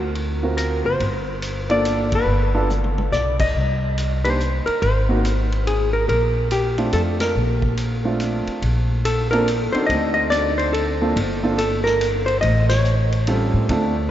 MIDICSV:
0, 0, Header, 1, 6, 480
1, 0, Start_track
1, 0, Key_signature, -2, "major"
1, 0, Tempo, 423131
1, 1133, Time_signature, 3, 2, 24, 8
1, 16005, End_track
2, 0, Start_track
2, 0, Title_t, "Hollow-body jazz guitar"
2, 0, Program_c, 0, 26
2, 0, Note_on_c, 0, 66, 73
2, 141, Note_off_c, 0, 66, 0
2, 649, Note_on_c, 0, 70, 67
2, 938, Note_off_c, 0, 70, 0
2, 974, Note_on_c, 0, 72, 83
2, 1575, Note_off_c, 0, 72, 0
2, 1940, Note_on_c, 0, 74, 94
2, 2426, Note_off_c, 0, 74, 0
2, 2442, Note_on_c, 0, 71, 77
2, 3031, Note_off_c, 0, 71, 0
2, 3545, Note_on_c, 0, 74, 82
2, 3856, Note_off_c, 0, 74, 0
2, 3861, Note_on_c, 0, 75, 94
2, 4460, Note_off_c, 0, 75, 0
2, 4816, Note_on_c, 0, 72, 84
2, 5259, Note_off_c, 0, 72, 0
2, 5287, Note_on_c, 0, 70, 86
2, 5464, Note_off_c, 0, 70, 0
2, 5468, Note_on_c, 0, 72, 82
2, 6208, Note_off_c, 0, 72, 0
2, 6434, Note_on_c, 0, 68, 74
2, 6715, Note_off_c, 0, 68, 0
2, 6729, Note_on_c, 0, 70, 79
2, 6889, Note_off_c, 0, 70, 0
2, 6908, Note_on_c, 0, 70, 78
2, 7351, Note_off_c, 0, 70, 0
2, 7394, Note_on_c, 0, 67, 78
2, 7858, Note_off_c, 0, 67, 0
2, 7863, Note_on_c, 0, 69, 79
2, 7946, Note_off_c, 0, 69, 0
2, 8176, Note_on_c, 0, 70, 72
2, 9259, Note_off_c, 0, 70, 0
2, 10269, Note_on_c, 0, 69, 75
2, 10552, Note_off_c, 0, 69, 0
2, 10559, Note_on_c, 0, 70, 81
2, 11010, Note_off_c, 0, 70, 0
2, 11032, Note_on_c, 0, 72, 91
2, 11186, Note_off_c, 0, 72, 0
2, 11191, Note_on_c, 0, 75, 93
2, 11489, Note_off_c, 0, 75, 0
2, 11502, Note_on_c, 0, 75, 91
2, 11674, Note_off_c, 0, 75, 0
2, 11686, Note_on_c, 0, 74, 91
2, 11979, Note_off_c, 0, 74, 0
2, 12001, Note_on_c, 0, 72, 84
2, 12163, Note_off_c, 0, 72, 0
2, 12172, Note_on_c, 0, 69, 72
2, 12541, Note_off_c, 0, 69, 0
2, 13140, Note_on_c, 0, 69, 78
2, 13425, Note_off_c, 0, 69, 0
2, 13430, Note_on_c, 0, 70, 88
2, 13883, Note_off_c, 0, 70, 0
2, 13908, Note_on_c, 0, 72, 94
2, 14073, Note_off_c, 0, 72, 0
2, 14078, Note_on_c, 0, 75, 93
2, 14373, Note_off_c, 0, 75, 0
2, 14401, Note_on_c, 0, 73, 84
2, 15317, Note_off_c, 0, 73, 0
2, 16005, End_track
3, 0, Start_track
3, 0, Title_t, "Grand piano"
3, 0, Program_c, 1, 0
3, 485, Note_on_c, 1, 60, 56
3, 485, Note_on_c, 1, 65, 52
3, 492, Note_on_c, 1, 66, 51
3, 494, Note_on_c, 1, 70, 59
3, 1101, Note_off_c, 1, 60, 0
3, 1101, Note_off_c, 1, 65, 0
3, 1104, Note_off_c, 1, 66, 0
3, 1105, Note_off_c, 1, 70, 0
3, 1921, Note_on_c, 1, 58, 66
3, 1924, Note_on_c, 1, 65, 65
3, 1925, Note_on_c, 1, 62, 62
3, 1925, Note_on_c, 1, 69, 73
3, 2540, Note_off_c, 1, 58, 0
3, 2541, Note_off_c, 1, 65, 0
3, 2542, Note_off_c, 1, 62, 0
3, 2542, Note_off_c, 1, 69, 0
3, 2888, Note_on_c, 1, 62, 62
3, 2889, Note_on_c, 1, 59, 72
3, 2889, Note_on_c, 1, 65, 65
3, 2890, Note_on_c, 1, 69, 81
3, 3041, Note_off_c, 1, 59, 0
3, 3041, Note_off_c, 1, 62, 0
3, 3041, Note_off_c, 1, 65, 0
3, 3042, Note_off_c, 1, 69, 0
3, 4813, Note_on_c, 1, 58, 51
3, 4817, Note_on_c, 1, 62, 48
3, 4817, Note_on_c, 1, 63, 46
3, 4823, Note_on_c, 1, 67, 58
3, 4964, Note_off_c, 1, 58, 0
3, 4966, Note_off_c, 1, 62, 0
3, 4966, Note_off_c, 1, 63, 0
3, 4969, Note_off_c, 1, 67, 0
3, 5770, Note_on_c, 1, 58, 71
3, 5773, Note_on_c, 1, 66, 78
3, 5776, Note_on_c, 1, 60, 63
3, 5776, Note_on_c, 1, 63, 61
3, 5924, Note_off_c, 1, 58, 0
3, 5925, Note_off_c, 1, 66, 0
3, 5926, Note_off_c, 1, 60, 0
3, 5926, Note_off_c, 1, 63, 0
3, 7691, Note_on_c, 1, 60, 56
3, 7691, Note_on_c, 1, 65, 60
3, 7692, Note_on_c, 1, 57, 58
3, 7693, Note_on_c, 1, 62, 54
3, 8308, Note_off_c, 1, 57, 0
3, 8308, Note_off_c, 1, 60, 0
3, 8308, Note_off_c, 1, 65, 0
3, 8309, Note_off_c, 1, 62, 0
3, 9129, Note_on_c, 1, 60, 53
3, 9134, Note_on_c, 1, 57, 61
3, 9134, Note_on_c, 1, 62, 52
3, 9135, Note_on_c, 1, 65, 63
3, 9746, Note_off_c, 1, 60, 0
3, 9749, Note_off_c, 1, 57, 0
3, 9749, Note_off_c, 1, 62, 0
3, 9749, Note_off_c, 1, 65, 0
3, 10571, Note_on_c, 1, 58, 67
3, 10575, Note_on_c, 1, 60, 62
3, 10575, Note_on_c, 1, 65, 61
3, 10578, Note_on_c, 1, 62, 65
3, 10581, Note_on_c, 1, 69, 74
3, 10724, Note_off_c, 1, 58, 0
3, 10726, Note_off_c, 1, 60, 0
3, 10726, Note_off_c, 1, 65, 0
3, 10727, Note_off_c, 1, 62, 0
3, 10729, Note_off_c, 1, 69, 0
3, 11050, Note_on_c, 1, 62, 60
3, 11051, Note_on_c, 1, 60, 65
3, 11052, Note_on_c, 1, 63, 58
3, 11059, Note_on_c, 1, 66, 60
3, 11059, Note_on_c, 1, 69, 75
3, 11666, Note_off_c, 1, 60, 0
3, 11666, Note_off_c, 1, 62, 0
3, 11667, Note_off_c, 1, 63, 0
3, 11670, Note_off_c, 1, 66, 0
3, 11670, Note_off_c, 1, 69, 0
3, 11702, Note_on_c, 1, 60, 55
3, 11703, Note_on_c, 1, 62, 49
3, 11703, Note_on_c, 1, 63, 53
3, 11704, Note_on_c, 1, 66, 48
3, 11708, Note_on_c, 1, 69, 60
3, 12427, Note_off_c, 1, 60, 0
3, 12427, Note_off_c, 1, 62, 0
3, 12427, Note_off_c, 1, 63, 0
3, 12427, Note_off_c, 1, 66, 0
3, 12429, Note_off_c, 1, 69, 0
3, 12495, Note_on_c, 1, 58, 66
3, 12496, Note_on_c, 1, 62, 57
3, 12496, Note_on_c, 1, 69, 68
3, 12500, Note_on_c, 1, 60, 57
3, 12501, Note_on_c, 1, 65, 57
3, 12645, Note_off_c, 1, 58, 0
3, 12645, Note_off_c, 1, 69, 0
3, 12646, Note_off_c, 1, 62, 0
3, 12648, Note_off_c, 1, 60, 0
3, 12648, Note_off_c, 1, 65, 0
3, 12966, Note_on_c, 1, 58, 65
3, 12971, Note_on_c, 1, 62, 60
3, 12973, Note_on_c, 1, 60, 56
3, 12973, Note_on_c, 1, 65, 57
3, 12974, Note_on_c, 1, 69, 69
3, 13120, Note_off_c, 1, 58, 0
3, 13123, Note_off_c, 1, 62, 0
3, 13124, Note_off_c, 1, 60, 0
3, 13124, Note_off_c, 1, 65, 0
3, 13124, Note_off_c, 1, 69, 0
3, 15058, Note_on_c, 1, 55, 57
3, 15059, Note_on_c, 1, 61, 52
3, 15060, Note_on_c, 1, 60, 51
3, 15061, Note_on_c, 1, 65, 53
3, 15065, Note_on_c, 1, 69, 66
3, 15523, Note_off_c, 1, 60, 0
3, 15529, Note_off_c, 1, 69, 0
3, 15530, Note_off_c, 1, 65, 0
3, 15536, Note_on_c, 1, 57, 59
3, 15537, Note_off_c, 1, 55, 0
3, 15537, Note_off_c, 1, 61, 0
3, 15540, Note_on_c, 1, 60, 55
3, 15543, Note_on_c, 1, 62, 57
3, 15546, Note_on_c, 1, 69, 68
3, 15547, Note_on_c, 1, 65, 56
3, 15813, Note_off_c, 1, 57, 0
3, 15815, Note_off_c, 1, 60, 0
3, 15817, Note_off_c, 1, 62, 0
3, 15819, Note_off_c, 1, 65, 0
3, 15819, Note_off_c, 1, 69, 0
3, 16005, End_track
4, 0, Start_track
4, 0, Title_t, "Upright bass"
4, 0, Program_c, 2, 32
4, 0, Note_on_c, 2, 38, 81
4, 917, Note_off_c, 2, 38, 0
4, 955, Note_on_c, 2, 30, 65
4, 1118, Note_off_c, 2, 30, 0
4, 1132, Note_on_c, 2, 31, 80
4, 2529, Note_off_c, 2, 31, 0
4, 2563, Note_on_c, 2, 31, 75
4, 3485, Note_off_c, 2, 31, 0
4, 3542, Note_on_c, 2, 35, 66
4, 3987, Note_off_c, 2, 35, 0
4, 4027, Note_on_c, 2, 36, 73
4, 5247, Note_off_c, 2, 36, 0
4, 5469, Note_on_c, 2, 32, 78
4, 6860, Note_off_c, 2, 32, 0
4, 6905, Note_on_c, 2, 34, 76
4, 7818, Note_off_c, 2, 34, 0
4, 7861, Note_on_c, 2, 41, 68
4, 8308, Note_off_c, 2, 41, 0
4, 8343, Note_on_c, 2, 34, 80
4, 9565, Note_off_c, 2, 34, 0
4, 9781, Note_on_c, 2, 34, 82
4, 11003, Note_off_c, 2, 34, 0
4, 11224, Note_on_c, 2, 38, 86
4, 12614, Note_off_c, 2, 38, 0
4, 12659, Note_on_c, 2, 31, 80
4, 14052, Note_off_c, 2, 31, 0
4, 14097, Note_on_c, 2, 33, 90
4, 15319, Note_off_c, 2, 33, 0
4, 15356, Note_on_c, 2, 45, 64
4, 15519, Note_off_c, 2, 45, 0
4, 15528, Note_on_c, 2, 38, 81
4, 16005, Note_off_c, 2, 38, 0
4, 16005, End_track
5, 0, Start_track
5, 0, Title_t, "Muted upright bass strokes"
5, 5306, Note_on_c, 9, 29, 35
5, 5419, Note_off_c, 9, 29, 0
5, 9608, Note_on_c, 9, 29, 35
5, 9722, Note_off_c, 9, 29, 0
5, 11051, Note_on_c, 9, 29, 37
5, 11165, Note_off_c, 9, 29, 0
5, 16005, End_track
6, 0, Start_track
6, 0, Title_t, "Drums"
6, 173, Note_on_c, 9, 51, 49
6, 286, Note_off_c, 9, 51, 0
6, 653, Note_on_c, 9, 44, 56
6, 653, Note_on_c, 9, 51, 60
6, 766, Note_off_c, 9, 44, 0
6, 766, Note_off_c, 9, 51, 0
6, 1134, Note_on_c, 9, 36, 31
6, 1137, Note_on_c, 9, 51, 54
6, 1248, Note_off_c, 9, 36, 0
6, 1251, Note_off_c, 9, 51, 0
6, 1614, Note_on_c, 9, 44, 58
6, 1614, Note_on_c, 9, 51, 64
6, 1727, Note_off_c, 9, 44, 0
6, 1727, Note_off_c, 9, 51, 0
6, 1926, Note_on_c, 9, 51, 38
6, 2039, Note_off_c, 9, 51, 0
6, 2100, Note_on_c, 9, 44, 54
6, 2100, Note_on_c, 9, 51, 56
6, 2214, Note_off_c, 9, 44, 0
6, 2214, Note_off_c, 9, 51, 0
6, 2404, Note_on_c, 9, 51, 67
6, 2407, Note_on_c, 9, 36, 70
6, 2518, Note_off_c, 9, 51, 0
6, 2521, Note_off_c, 9, 36, 0
6, 3062, Note_on_c, 9, 47, 39
6, 3063, Note_on_c, 9, 44, 55
6, 3175, Note_off_c, 9, 47, 0
6, 3176, Note_off_c, 9, 44, 0
6, 3222, Note_on_c, 9, 47, 45
6, 3336, Note_off_c, 9, 47, 0
6, 3381, Note_on_c, 9, 47, 65
6, 3494, Note_off_c, 9, 47, 0
6, 3545, Note_on_c, 9, 38, 51
6, 3546, Note_on_c, 9, 44, 55
6, 3659, Note_off_c, 9, 38, 0
6, 3660, Note_off_c, 9, 44, 0
6, 3851, Note_on_c, 9, 49, 59
6, 3854, Note_on_c, 9, 36, 65
6, 3964, Note_off_c, 9, 49, 0
6, 3968, Note_off_c, 9, 36, 0
6, 4028, Note_on_c, 9, 36, 31
6, 4141, Note_off_c, 9, 36, 0
6, 4512, Note_on_c, 9, 44, 50
6, 4512, Note_on_c, 9, 51, 60
6, 4625, Note_off_c, 9, 44, 0
6, 4625, Note_off_c, 9, 51, 0
6, 4822, Note_on_c, 9, 51, 55
6, 4936, Note_off_c, 9, 51, 0
6, 4991, Note_on_c, 9, 44, 47
6, 5104, Note_off_c, 9, 44, 0
6, 5301, Note_on_c, 9, 51, 40
6, 5414, Note_off_c, 9, 51, 0
6, 5469, Note_on_c, 9, 36, 32
6, 5471, Note_on_c, 9, 51, 52
6, 5583, Note_off_c, 9, 36, 0
6, 5584, Note_off_c, 9, 51, 0
6, 5953, Note_on_c, 9, 44, 60
6, 5953, Note_on_c, 9, 51, 59
6, 6067, Note_off_c, 9, 44, 0
6, 6067, Note_off_c, 9, 51, 0
6, 6266, Note_on_c, 9, 51, 40
6, 6379, Note_off_c, 9, 51, 0
6, 6434, Note_on_c, 9, 51, 53
6, 6547, Note_off_c, 9, 51, 0
6, 6906, Note_on_c, 9, 36, 30
6, 6910, Note_on_c, 9, 51, 54
6, 7020, Note_off_c, 9, 36, 0
6, 7024, Note_off_c, 9, 51, 0
6, 7382, Note_on_c, 9, 44, 56
6, 7382, Note_on_c, 9, 51, 62
6, 7495, Note_off_c, 9, 44, 0
6, 7495, Note_off_c, 9, 51, 0
6, 7689, Note_on_c, 9, 51, 42
6, 7803, Note_off_c, 9, 51, 0
6, 7856, Note_on_c, 9, 44, 51
6, 7856, Note_on_c, 9, 51, 56
6, 7970, Note_off_c, 9, 44, 0
6, 7970, Note_off_c, 9, 51, 0
6, 8167, Note_on_c, 9, 38, 67
6, 8168, Note_on_c, 9, 51, 60
6, 8281, Note_off_c, 9, 38, 0
6, 8282, Note_off_c, 9, 51, 0
6, 8647, Note_on_c, 9, 36, 60
6, 8761, Note_off_c, 9, 36, 0
6, 8819, Note_on_c, 9, 44, 48
6, 8819, Note_on_c, 9, 51, 57
6, 8932, Note_off_c, 9, 44, 0
6, 8932, Note_off_c, 9, 51, 0
6, 9299, Note_on_c, 9, 44, 47
6, 9299, Note_on_c, 9, 51, 57
6, 9412, Note_off_c, 9, 44, 0
6, 9412, Note_off_c, 9, 51, 0
6, 9612, Note_on_c, 9, 51, 39
6, 9725, Note_off_c, 9, 51, 0
6, 9781, Note_on_c, 9, 36, 31
6, 9783, Note_on_c, 9, 51, 55
6, 9895, Note_off_c, 9, 36, 0
6, 9896, Note_off_c, 9, 51, 0
6, 10268, Note_on_c, 9, 44, 62
6, 10268, Note_on_c, 9, 51, 67
6, 10381, Note_off_c, 9, 44, 0
6, 10381, Note_off_c, 9, 51, 0
6, 10581, Note_on_c, 9, 51, 44
6, 10695, Note_off_c, 9, 51, 0
6, 10751, Note_on_c, 9, 44, 51
6, 10751, Note_on_c, 9, 51, 70
6, 10864, Note_off_c, 9, 44, 0
6, 10864, Note_off_c, 9, 51, 0
6, 11055, Note_on_c, 9, 51, 41
6, 11169, Note_off_c, 9, 51, 0
6, 11225, Note_on_c, 9, 36, 34
6, 11228, Note_on_c, 9, 51, 55
6, 11338, Note_off_c, 9, 36, 0
6, 11342, Note_off_c, 9, 51, 0
6, 11705, Note_on_c, 9, 44, 62
6, 11705, Note_on_c, 9, 51, 69
6, 11818, Note_off_c, 9, 44, 0
6, 11818, Note_off_c, 9, 51, 0
6, 12016, Note_on_c, 9, 51, 43
6, 12130, Note_off_c, 9, 51, 0
6, 12187, Note_on_c, 9, 51, 59
6, 12301, Note_off_c, 9, 51, 0
6, 12663, Note_on_c, 9, 36, 34
6, 12668, Note_on_c, 9, 51, 67
6, 12777, Note_off_c, 9, 36, 0
6, 12781, Note_off_c, 9, 51, 0
6, 13142, Note_on_c, 9, 44, 59
6, 13142, Note_on_c, 9, 51, 70
6, 13255, Note_off_c, 9, 44, 0
6, 13255, Note_off_c, 9, 51, 0
6, 13450, Note_on_c, 9, 38, 53
6, 13563, Note_off_c, 9, 38, 0
6, 13624, Note_on_c, 9, 44, 57
6, 13624, Note_on_c, 9, 51, 68
6, 13737, Note_off_c, 9, 44, 0
6, 13737, Note_off_c, 9, 51, 0
6, 13928, Note_on_c, 9, 51, 44
6, 14042, Note_off_c, 9, 51, 0
6, 14095, Note_on_c, 9, 51, 58
6, 14097, Note_on_c, 9, 36, 32
6, 14209, Note_off_c, 9, 51, 0
6, 14210, Note_off_c, 9, 36, 0
6, 14400, Note_on_c, 9, 38, 84
6, 14401, Note_on_c, 9, 51, 67
6, 14514, Note_off_c, 9, 38, 0
6, 14515, Note_off_c, 9, 51, 0
6, 14572, Note_on_c, 9, 44, 59
6, 14685, Note_off_c, 9, 44, 0
6, 14889, Note_on_c, 9, 51, 44
6, 15002, Note_off_c, 9, 51, 0
6, 15053, Note_on_c, 9, 51, 61
6, 15166, Note_off_c, 9, 51, 0
6, 15531, Note_on_c, 9, 51, 60
6, 15532, Note_on_c, 9, 36, 34
6, 15644, Note_off_c, 9, 51, 0
6, 15646, Note_off_c, 9, 36, 0
6, 16005, End_track
0, 0, End_of_file